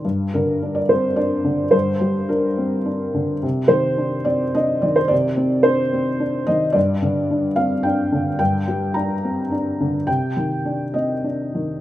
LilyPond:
\new Staff \with { instrumentName = "Felt piano" } { \time 3/4 \key g \minor \tempo 4 = 107 << { r8 bes'8. d''16 c''8 d''4 | c''4 bes'2 | r8 c''4 d''8 ees''8 d''16 c''16 | d''4 c''4. ees''8 |
d''4. f''8 g''4 | g''4 bes''4 r4 | g''4. ees''4. | } \\ { g,8 d8 d'8 c'8 d'8 d8 | g,8 g8 d'8 c'8 d'8 d8 | c8 ees8 d'8 c'8 d'8 ees8 | c8 c'8 d'8 c'8 d'8 ees8 |
g,8 d8 d'8 c'8 d'8 d8 | g,8 g8 d'8 c'8 d'8 d8 | c8 ees8 d'8 c'8 d'8 ees8 | } >> }